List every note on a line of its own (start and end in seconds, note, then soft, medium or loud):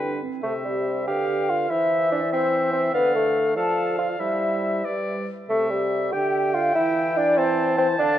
0.00 0.21 G2 soft
0.00 0.21 D3 soft
0.00 0.23 D4 soft
0.00 0.21 B4 soft
0.00 0.22 G5 soft
0.22 0.43 C4 soft
0.42 1.09 C3 soft
0.42 0.53 A3 soft
0.42 0.66 A4 soft
0.42 1.09 C5 soft
0.42 1.03 E5 soft
0.64 1.07 G3 soft
0.64 1.08 G4 soft
1.07 1.70 D3 soft
1.07 1.51 G4 medium
1.07 1.70 B4 soft
1.07 1.72 F5 soft
1.07 1.52 G5 soft
1.49 1.72 F4 medium
1.49 1.70 F5 soft
1.70 2.92 E3 medium
1.70 2.11 E4 medium
1.70 2.31 C5 soft
1.70 2.32 E5 soft
1.70 2.13 E5 medium
2.12 2.21 D4 medium
2.12 2.34 D5 medium
2.32 2.73 C4 medium
2.32 2.93 C5 soft
2.32 2.73 C5 medium
2.32 2.93 E5 medium
2.73 2.94 C4 medium
2.73 2.79 C5 medium
2.93 3.57 D3 soft
2.93 3.16 B3 medium
2.93 3.15 B4 medium
2.93 3.52 D5 medium
2.93 3.52 F5 soft
3.15 3.56 A3 medium
3.15 3.56 A4 soft
3.56 4.19 F3 soft
3.56 3.98 A4 medium
3.56 4.21 D5 soft
3.56 4.21 F5 soft
3.56 3.98 A5 medium
3.99 4.08 F4 soft
3.99 4.05 F5 soft
4.20 4.84 G3 soft
4.20 4.83 E4 medium
4.20 4.87 C5 soft
4.20 4.86 E5 soft
4.20 4.84 E5 soft
4.85 5.28 G3 soft
4.85 5.28 B4 soft
4.85 5.28 D5 soft
5.49 6.09 C3 soft
5.49 5.73 A3 medium
5.49 5.70 A4 medium
5.49 6.09 E5 soft
5.49 7.39 E5 soft
5.71 6.15 G3 soft
5.71 6.15 G4 soft
6.13 6.74 D3 soft
6.13 6.56 G4 medium
6.13 7.39 G5 medium
6.13 6.55 G5 medium
6.55 6.75 F4 medium
6.55 6.76 F5 medium
6.75 7.97 E3 medium
6.75 7.18 E4 medium
6.75 7.19 E5 medium
7.17 7.39 D4 medium
7.17 7.40 D5 medium
7.37 7.78 C4 medium
7.37 7.99 C5 medium
7.37 7.77 C5 medium
7.37 8.19 A5 medium
7.78 7.88 C4 medium
7.78 7.98 C5 medium
7.99 8.19 D3 medium
7.99 8.19 D4 loud
7.99 8.19 D5 medium
7.99 8.19 F5 medium